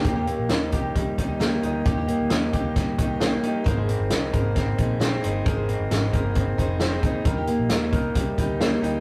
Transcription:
<<
  \new Staff \with { instrumentName = "Clean electric guitar" } { \time 4/4 \key ees \major \tempo 4 = 133 g'8 bes8 ees'8 g'8 g8 ees'8 bes8 ees'8 | g'8 bes8 ees'8 g'8 g8 ees'8 bes8 ees'8 | <aes bes'>8 c'8 ees'8 bes'8 c'8 ees'8 c'8 ees'8 | <aes bes'>8 c'8 ees'8 bes'8 c'8 ees'8 c'8 ees'8 |
bes'8 bes8 ees'8 bes'8 g8 ees'8 bes8 ees'8 | }
  \new Staff \with { instrumentName = "Steel-string acoustic guitar" } { \time 4/4 \key ees \major <ees bes ees' g'>16 <bes ees' g'>4~ <bes ees' g'>16 <ees bes ees' g'>4 <ees bes ees' g'>8 <ees bes ees' g'>8 <ees bes ees' g'>8 | <ees bes ees' g'>16 <bes ees' g'>4~ <bes ees' g'>16 <bes ees' g'>4 <ees bes ees' g'>8 <ees bes ees' g'>8 <ees bes ees' g'>8 | <aes bes ees' aes' c''>16 <ees' aes' c''>4~ <ees' aes' c''>16 <bes ees' aes' c''>4 <bes ees' aes' c''>8 <bes ees' aes' c''>8 <bes ees' aes' c''>8 | <aes bes ees' aes' c''>16 <ees' aes' c''>4~ <ees' aes' c''>16 <bes ees' aes' c''>4 <bes ees' aes' c''>8 <bes ees' aes' c''>8 <bes ees' aes' c''>8 |
<ees g bes ees' g'>16 <bes ees' g'>4~ <bes ees' g'>16 <g bes ees' g'>4 <g bes ees' g'>8 <g bes ees' g'>8 <g bes ees' g'>8 | }
  \new Staff \with { instrumentName = "Fingered electric bass" } { \clef bass \time 4/4 \key ees \major ees,8. bes,,16 ees,8 c,4 d,4 d,8 | ees,8. d,16 ees,8 d,4 c,4 r8 | aes,,8. g,,16 c,8 aes,,4 bes,,4 g,,8 | aes,,8. g,,16 aes,,8 g,,4 f,,4 r8 |
ees,8. bes,,16 ees,8 c,4 d,4 d,8 | }
  \new DrumStaff \with { instrumentName = "Drums" } \drummode { \time 4/4 <hh bd>8 hh8 <hh sn>8 <hh bd>8 <hh bd>8 <hh bd>8 <hh sn>8 hh8 | <hh bd>8 hh8 <hh sn>8 <hh bd>8 <hh bd sn>8 <hh bd>8 <hh sn>8 hh8 | <hh bd>8 hh8 <hh sn>8 <hh bd>8 <hh bd sn>8 <hh bd>8 <hh sn>8 hh8 | <hh bd>8 hh8 <hh sn>8 <hh bd>8 <hh bd>8 <hh bd>8 <hh sn>8 <hh bd>8 |
<hh bd>8 hh8 <hh sn>8 <hh bd>8 <hh bd>8 <hh bd>8 <hh sn>8 hh8 | }
>>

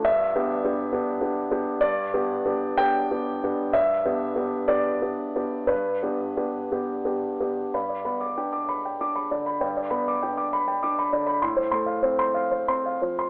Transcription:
\new Staff \with { instrumentName = "Grand piano" } { \time 6/8 \key g \mixolydian \tempo 4. = 64 << { e''2. | d''4. g''4. | e''4. d''4. | b'2~ b'8 r8 |
b''16 d''16 b''16 d'''16 g''16 d'''16 b''16 g''16 d'''16 b''16 d''16 b''16 | g''16 d''16 b''16 d'''16 g''16 d'''16 b''16 g''16 d'''16 b''16 d''16 b''16 | c'''16 c''16 c'''16 f''16 c''16 c'''16 f''16 c''16 c'''16 f''16 c''16 c'''16 | } \\ { g,8 <b d' g'>8 <b d' g'>8 <b d' g'>8 <b d' g'>8 <b d' g'>8 | g,8 <b d' g'>8 <b d' g'>8 <b d' g'>8 <b d' g'>8 <b d' g'>8 | g,8 <b d' g'>8 <b d' g'>8 <b d' g'>8 <b d' g'>8 <b d' g'>8 | g,8 <b d' g'>8 <b d' g'>8 <b d' g'>8 <b d' g'>8 <b d' g'>8 |
g,8 b8 d'4 d'8 d8 | g,8 b8 d'4 d'8 d8 | a,8 a8 c'4 c'8 f8 | } >> }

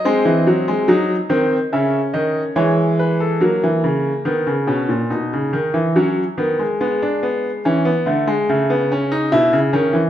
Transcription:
<<
  \new Staff \with { instrumentName = "Grand piano" } { \time 4/4 \key cis \phrygian \tempo 4 = 71 << { dis''2 e''8 dis''8 cis''8 b'16 a'16 | r1 | r1 | } \\ { bis4 dis'8 bis8 cis'4 gis4 | ais4 b8 cis'8 dis'4 cis'8 b16 gis16 | b16 d'16 b8 cis'16 b16 a16 gis16 a16 b16 cis'16 dis'16 e'8 cis'8 | } >> }
  \new Staff \with { instrumentName = "Grand piano" } { \clef bass \time 4/4 \key cis \phrygian gis16 e16 fis16 gis16 fis8 dis8 cis8 dis8 e4 | fis16 e16 cis8 dis16 cis16 b,16 ais,16 b,16 cis16 dis16 e16 fis8 dis8 | gis4 e8 d8 cis4 b,16 cis16 dis16 e16 | }
>>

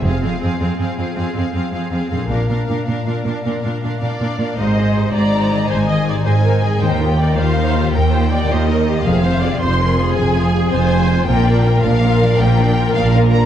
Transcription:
<<
  \new Staff \with { instrumentName = "Violin section" } { \time 12/8 \key aes \lydian \tempo 4. = 107 << { r1. | r1 r8 d''4. | ees''4. bes''4. aes''4. aes''4. | g''4. f''4. g''4. ees''4. |
f''4. c'''4. aes''4. aes''4. | g''4. f''4. g''4. f''8 r8 bes''8 | } \\ { f''8 f''8 f''8 f''8 f''8 f''8 f''8 f''8 f''8 f''8 f''8 f''8 | f''8 f''8 f''8 f''8 f''8 f''8 f''8 f''8 f''8 f''8 f''8 f''8 | r1. | r1. |
r1. | r1. | } >> }
  \new Staff \with { instrumentName = "Violin section" } { \time 12/8 \key aes \lydian aes'8 aes'8 aes'8 aes'8 aes'8 aes'8 aes'8 aes'8 aes'8 aes'8 aes'8 aes'8 | bes'8 bes'8 bes'8 bes'8 bes'8 bes'8 bes'8 bes'8 bes'8 bes'8 bes'8 bes'8 | <ees' c''>8 <aes' ees''>8 <ees' c''>8 <aes' ees''>8 <ees' c''>8 <aes' ees''>8 <ees' c''>8 <aes' ees''>8 <ees' c''>8 <aes' ees''>8 <ees' c''>8 <aes' ees''>8 | <ees' bes'>8 <f' g'>8 <ees' bes'>8 <f' g'>8 <ees' bes'>8 <f' g'>8 <ees' bes'>8 <f' g'>8 <ees' bes'>8 <f' g'>8 <ees' bes'>8 <f' g'>8 |
<c' aes'>8 <f' c''>8 <c' aes'>8 <f' c''>8 <c' aes'>8 <f' c''>8 <c' aes'>8 <f' c''>8 <c' aes'>8 <f' c''>8 <c' aes'>8 <f' c''>8 | <f' bes'>8 <d' d''>8 <f' bes'>8 <d' d''>8 <f' bes'>8 <d' d''>8 <f' bes'>8 <d' d''>8 <f' bes'>8 <d' d''>8 <f' bes'>8 <d' d''>8 | }
  \new Staff \with { instrumentName = "Viola section" } { \time 12/8 \key aes \lydian c'8 c'8 c'8 c'8 c'8 c'8 c'8 c'8 c'8 c'8 c'8 c'8 | d'8 d'8 d'8 d'8 d'8 d'8 d'8 d'8 d'8 d'8 d'8 d'8 | c''4. d''4. c''8 ees''8 d''8 c''8 bes'8 aes'8 | c''8 bes'8 d''8 c''4. bes'8 c''8 d''8 c''8 bes'8 g'8 |
aes'8 c''8 d''8 c''8 bes'8 aes'2 c''4. | bes'1. | }
  \new Staff \with { instrumentName = "Harp" } { \time 12/8 \key aes \lydian <f, c' f' aes'>1. | <bes, d' f' bes'>1. | aes,8 ees'8 aes'8 c''8 ees'8 ees8 ees'8 ees8 aes'8 c''8 ees'8 ees8 | ees8 ees'8 f'8 bes'8 ees'8 bes8 ees'8 bes8 f'8 bes'8 ees'8 bes8 |
f8 f'8 aes'8 c''8 f'8 c'8 f'8 c'8 aes'8 c''8 f'8 c'8 | bes,8 d'8 f'8 bes'8 d'8 f8 d'8 f8 f'8 bes'8 d'8 f8 | }
  \new Staff \with { instrumentName = "Cello section" } { \clef bass \time 12/8 \key aes \lydian f,8 f,8 f,8 f,8 f,8 f,8 f,8 f,8 f,8 f,8 f,8 f,8 | bes,8 bes,8 bes,8 bes,8 bes,8 bes,8 bes,8 bes,8 bes,8 bes,8 bes,8 bes,8 | aes,4. aes,4. aes,4. aes,4. | ees,4. ees,4. ees,4. ees,4. |
f,4. f,4. f,4. f,4. | bes,4. bes,4. bes,4. bes,4. | }
  \new Staff \with { instrumentName = "Double bass section" } { \clef bass \time 12/8 \key aes \lydian f,,8 r1 r4. | bes,,8 r1 r4. | aes,,4. aes,,4. aes,,4. aes,,4. | ees,4. ees,4. ees,4. ees,4. |
f,,4. f,,4. f,,4. f,,4. | bes,,4. bes,,4. bes,,4. bes,,4. | }
>>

